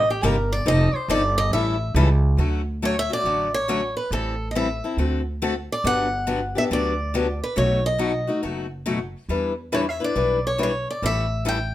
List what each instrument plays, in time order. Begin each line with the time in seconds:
Already playing: upright bass A1
0.10 steel-string acoustic guitar G4
0.23 upright bass G1, steel-string acoustic guitar C3 G3 A#3 D#4 G4 A#4
0.52 steel-string acoustic guitar D5
0.66 upright bass F1, steel-string acoustic guitar F3 C4 D#4 A4 D#5
0.93 steel-string acoustic guitar C5, muted upright bass stroke
1.08 upright bass G1, steel-string acoustic guitar F3 C4 D#4 A4 D5
1.38 steel-string acoustic guitar D#5
1.51 upright bass A1, steel-string acoustic guitar E3 G3 C#4 E4 A4 E5
1.94 upright bass C#2, steel-string acoustic guitar E3 G3 C#4 E4 A4
2.37 upright bass D2, steel-string acoustic guitar D3 F#3 A3 C#4 F#4
2.82 steel-string acoustic guitar D3 F#3 A3 C#4 F#4 C#5
2.99 steel-string acoustic guitar E5
3.10 steel-string acoustic guitar A3 C#4 F#4 D5
3.24 upright bass A1, steel-string acoustic guitar D3 F#3 A3 C#4 F#4
3.54 steel-string acoustic guitar C#5
3.68 steel-string acoustic guitar D3 F#3 A3 C#4 F#4
3.97 steel-string acoustic guitar B4
4.11 upright bass A1, steel-string acoustic guitar E3 G3 C4 E4 A4
4.51 steel-string acoustic guitar D#5
4.55 steel-string acoustic guitar E3 G3 C4 E4 A4 E5
4.84 steel-string acoustic guitar C4 E4 A4
4.97 upright bass D2, steel-string acoustic guitar D3 A3 C4 F#4 A4
5.42 steel-string acoustic guitar D3 A3 C4 F#4 A4
5.72 steel-string acoustic guitar D5
5.84 upright bass G1, steel-string acoustic guitar D3 F#3 B3 D4 G4 F#5
6.27 steel-string acoustic guitar D3 F#3 B3 D4 G4
6.55 steel-string acoustic guitar B3 D4 G4 E5
6.71 upright bass D2, steel-string acoustic guitar D3 F#3 B3 D4 G4 D5
7.14 steel-string acoustic guitar D3 F#3 B3 D4 G4
7.44 steel-string acoustic guitar B4
7.56 upright bass B1, steel-string acoustic guitar B2 F#3 A3 D#4 F#4 C#5
7.86 steel-string acoustic guitar D#5
7.98 steel-string acoustic guitar B2 F#3 A3 D#4 F#4
8.27 steel-string acoustic guitar A3 D#4 F#4
8.43 upright bass F#1, steel-string acoustic guitar B2 F#3 A3 D#4 F#4
8.86 steel-string acoustic guitar B2 F#3 A3 D#4 F#4
9.29 upright bass E2, steel-string acoustic guitar E3 G3 D4 E4 B4
9.72 steel-string acoustic guitar E3 G3 D4 E4 B4 C#5
9.89 steel-string acoustic guitar E5
10.00 steel-string acoustic guitar D4 E4 B4
10.04 steel-string acoustic guitar D5
10.15 upright bass B1, steel-string acoustic guitar E3 G3 D4 E4 B4
10.47 steel-string acoustic guitar C#5
10.58 steel-string acoustic guitar E3 G3 D4 E4 B4
10.63 steel-string acoustic guitar C#5
10.90 steel-string acoustic guitar D5
11.02 upright bass A1, steel-string acoustic guitar E3 G3 C#4 E4 A4 E5
11.45 steel-string acoustic guitar E3 G3 C#4 E4 A4 G5